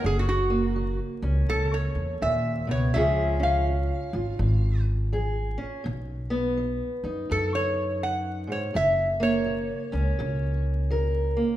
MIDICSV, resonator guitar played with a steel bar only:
0, 0, Header, 1, 2, 480
1, 0, Start_track
1, 0, Key_signature, 6, "major"
1, 0, Tempo, 725514
1, 23, Time_signature, 4, 2, 24, 8
1, 7653, End_track
2, 0, Start_track
2, 0, Title_t, "Resonator guitar played with a steel bar"
2, 0, Program_c, 0, 25
2, 40, Note_on_c, 0, 68, 91
2, 124, Note_off_c, 0, 68, 0
2, 127, Note_on_c, 0, 66, 83
2, 181, Note_off_c, 0, 66, 0
2, 189, Note_on_c, 0, 66, 86
2, 654, Note_off_c, 0, 66, 0
2, 989, Note_on_c, 0, 69, 107
2, 1144, Note_off_c, 0, 69, 0
2, 1150, Note_on_c, 0, 73, 80
2, 1461, Note_off_c, 0, 73, 0
2, 1471, Note_on_c, 0, 76, 91
2, 1781, Note_off_c, 0, 76, 0
2, 1794, Note_on_c, 0, 73, 84
2, 1944, Note_on_c, 0, 76, 84
2, 1948, Note_off_c, 0, 73, 0
2, 2258, Note_off_c, 0, 76, 0
2, 2270, Note_on_c, 0, 77, 87
2, 3206, Note_off_c, 0, 77, 0
2, 4841, Note_on_c, 0, 69, 110
2, 4992, Note_off_c, 0, 69, 0
2, 4995, Note_on_c, 0, 73, 97
2, 5303, Note_off_c, 0, 73, 0
2, 5314, Note_on_c, 0, 78, 87
2, 5622, Note_off_c, 0, 78, 0
2, 5636, Note_on_c, 0, 73, 79
2, 5788, Note_off_c, 0, 73, 0
2, 5797, Note_on_c, 0, 76, 100
2, 6103, Note_off_c, 0, 76, 0
2, 6105, Note_on_c, 0, 73, 99
2, 7035, Note_off_c, 0, 73, 0
2, 7653, End_track
0, 0, End_of_file